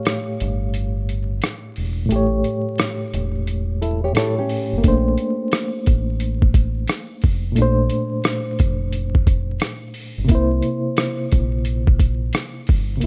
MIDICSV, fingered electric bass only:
0, 0, Header, 1, 2, 480
1, 0, Start_track
1, 0, Tempo, 681818
1, 1486, Time_signature, 4, 2, 24, 8
1, 9198, End_track
2, 0, Start_track
2, 0, Title_t, "Fingered electric bass"
2, 0, Program_c, 0, 33
2, 290, Note_on_c, 0, 31, 95
2, 980, Note_off_c, 0, 31, 0
2, 1250, Note_on_c, 0, 28, 82
2, 1466, Note_off_c, 0, 28, 0
2, 1489, Note_on_c, 0, 33, 107
2, 1705, Note_off_c, 0, 33, 0
2, 2208, Note_on_c, 0, 28, 99
2, 2899, Note_off_c, 0, 28, 0
2, 3327, Note_on_c, 0, 29, 78
2, 3411, Note_off_c, 0, 29, 0
2, 3411, Note_on_c, 0, 34, 109
2, 3626, Note_off_c, 0, 34, 0
2, 4136, Note_on_c, 0, 33, 90
2, 4823, Note_off_c, 0, 33, 0
2, 5097, Note_on_c, 0, 29, 83
2, 5309, Note_off_c, 0, 29, 0
2, 5335, Note_on_c, 0, 34, 106
2, 5548, Note_off_c, 0, 34, 0
2, 6055, Note_on_c, 0, 29, 88
2, 6742, Note_off_c, 0, 29, 0
2, 7166, Note_on_c, 0, 31, 89
2, 7240, Note_off_c, 0, 31, 0
2, 7247, Note_on_c, 0, 36, 107
2, 7464, Note_off_c, 0, 36, 0
2, 7974, Note_on_c, 0, 34, 93
2, 8662, Note_off_c, 0, 34, 0
2, 8935, Note_on_c, 0, 31, 79
2, 9148, Note_off_c, 0, 31, 0
2, 9171, Note_on_c, 0, 36, 96
2, 9198, Note_off_c, 0, 36, 0
2, 9198, End_track
0, 0, End_of_file